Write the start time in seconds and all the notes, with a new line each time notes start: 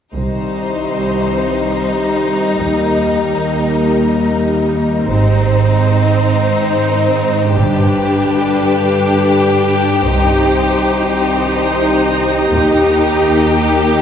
0.14 C2 D#3 G3 D#4 G4 C5
2.61 D#2 A#4
5.08 G#1 G#2 D#3 C4 D#4 C5
7.56 G1 G2 D3 D4 G4 B4
10.03 C2 D#3 D#4 G4 C5
12.51 D#2 G4 A#4